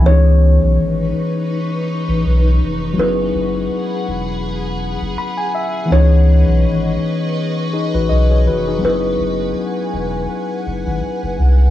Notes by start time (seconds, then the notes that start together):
0.02 C#2 E3 B3 D#4 B4 C#6
0.06 C#4 D#4 C#5
0.12 G#4
0.62 B1
0.79 G#1
2.09 A1
2.25 B1
2.62 F1
2.93 F#3 B3 G#4 F#5 B5
2.98 F#1 C#4 E4 B4
3.04 G#4
3.35 F#1
4.08 E1
5.01 F#1
5.18 B5
5.37 G#5
5.55 E5
5.85 E3 B3
5.90 C#2 C#4 D#4 B4 C#5 D#5 C#6
5.96 G#4
6.48 B1
6.64 G#1
7.73 D#4 G#4
7.94 A1 F#4 B4
8.09 B1 G#4 D#5
8.30 G#4 C#5
8.47 F1 F#4 B4
8.68 D#4 G#4
8.79 F#3 B3
8.83 F#1 C#4 E4 B4 F#5 G#5
8.89 G#4
9.20 F#1
9.94 E1
10.67 F#1
10.87 G#1
11.23 F#1
11.39 C2